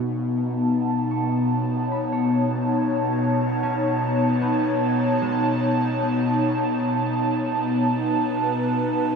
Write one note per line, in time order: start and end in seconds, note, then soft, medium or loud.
0.00 9.15 B2 medium
0.00 9.15 B3 medium
0.00 9.15 D#4 medium
0.00 0.22 F#4 medium
0.35 9.15 A5 medium
1.11 2.37 C#6 medium
1.51 8.10 C#5 medium
1.92 5.29 B5 medium
2.12 5.50 C#5 medium
3.63 6.53 C#4 medium
4.41 7.52 B3 medium
5.22 9.12 G#3 medium
7.88 9.15 B4 medium